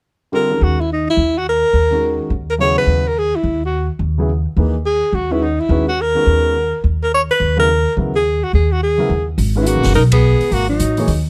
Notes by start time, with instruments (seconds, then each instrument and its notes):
0.32 grand piano D3 G3 C4 F4 A4, alto saxophone A#4
0.50 grand piano D#3 G#3 C#4 F#4 A#4
0.61 upright bass D#2, alto saxophone F#4
0.81 alto saxophone E4
0.93 alto saxophone D#4
1.10 alto saxophone E4
1.17 upright bass D#2
1.38 alto saxophone F#4
1.49 alto saxophone A#4
1.73 upright bass D#2
1.91 grand piano D#3 G#3 C#4 F#4 A#4
2.30 upright bass D#2
2.50 alto saxophone A#4
2.58 grand piano C#3 F#3 B3 E4 G#4, alto saxophone C#5
2.78 alto saxophone B4
2.86 upright bass D#2
3.08 alto saxophone A#4
3.19 alto saxophone G#4
3.36 alto saxophone E4
3.43 upright bass D#2
3.65 alto saxophone F#4
3.99 upright bass D#2
4.18 grand piano C#3 F#3 B3 E4 G#4
4.57 upright bass D#2, grand piano E3 A#3 D#4 G#4 B4
4.86 alto saxophone G#4
5.13 upright bass D#2, alto saxophone F#4
5.31 grand piano D#3 G#3 C#4 F#4 B4, alto saxophone E4
5.43 alto saxophone D#4
5.60 alto saxophone E4
5.69 upright bass D#2, grand piano D#3 G#3 C#4 F#4 B4
5.88 alto saxophone F#4
6.01 alto saxophone A#4
6.15 grand piano D#3 G#3 B3 C#4 F#4
6.26 upright bass D#2
6.84 upright bass D#2
7.03 alto saxophone A#4
7.14 alto saxophone C#5
7.31 alto saxophone B4
7.40 upright bass D#2
7.56 grand piano C#3 F#3 B3 E4 A#4, alto saxophone A#4
7.96 upright bass D#2, grand piano C#3 F#3 B3 E4 A#4
8.16 alto saxophone G#4
8.44 alto saxophone F#4
8.53 upright bass D#2, alto saxophone G#4
8.72 alto saxophone F#4
8.83 alto saxophone G#4
8.98 grand piano C#3 F#3 B3 E4 A#4
9.09 upright bass D#2
9.38 upright bass G#1, open hi-hat
9.56 grand piano D#3 G#3 C#4 F#4 B4
9.61 tenor saxophone G#3, alto saxophone E4
9.66 tenor saxophone A#3, alto saxophone F#4, closed hi-hat
9.76 upright bass A#1
9.83 upright bass F#1, snare, open hi-hat
9.94 upright bass B1, tenor saxophone D#4, alto saxophone A#4, open hi-hat
10.12 tenor saxophone B3, alto saxophone G#4, kick, ride
10.40 muted upright bass stroke, open hi-hat
10.51 upright bass G#1, tenor saxophone A#3, alto saxophone F#4, open hi-hat
10.69 tenor saxophone F#3, alto saxophone D#4
10.80 upright bass A1, closed hi-hat
10.97 grand piano E3 A#3 D#4 G#4 C#5, open hi-hat
11.07 upright bass D#2, open hi-hat